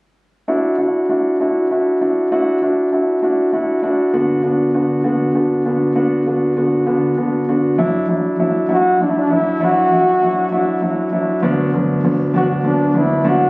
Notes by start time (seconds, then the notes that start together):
0.48 D4 E4 F#4
0.78 D4 E4 F#4
1.09 D4 E4 F#4
1.40 D4 E4 F#4
1.71 D4 E4 F#4
2.01 D4 E4 F#4
2.31 D4 E4 F#4
2.62 D4 E4 F#4
2.92 D4 E4 F#4
3.22 D4 E4 F#4
3.53 D4 E4 F#4
3.82 D4 E4 F#4
4.13 D3 B3 D4 F#4
4.43 D3 B3 D4 F#4
4.74 D3 B3 D4 F#4
5.04 D3 B3 D4 F#4
5.35 D3 B3 D4 F#4
5.65 D3 B3 D4 F#4
5.95 D3 B3 D4 F#4
6.26 D3 B3 D4 F#4
6.56 D3 B3 D4 F#4
6.86 D3 B3 D4 F#4
7.17 D3 B3 D4 F#4
7.48 D3 B3 D4 F#4
7.78 F#3 D4 E4
8.09 F#3 D4 E4
8.39 F#3 D4 E4
8.68 F#3 D4 E4
8.73 F#4
9.00 F#3 D4 E4
9.10 E4
9.18 D4
9.30 F#3 D4 E4
9.61 F#3 D4 E4 F#4
9.91 F#3 D4 E4
10.22 F#3 D4 E4
10.52 F#3 D4 E4
10.82 F#3 D4 E4
11.12 F#3 D4 E4
11.42 D2 F#3 B3 D4
11.73 D2 F#3 B3 D4
12.04 D2 F#3 B3 D4
12.33 D2 F#3 B3 D4 F#4
12.64 D2 F#3 B3 D4
12.94 D2 F#3 B3 D4
12.98 E4
13.24 D2 F#3 B3 D4
13.29 F#4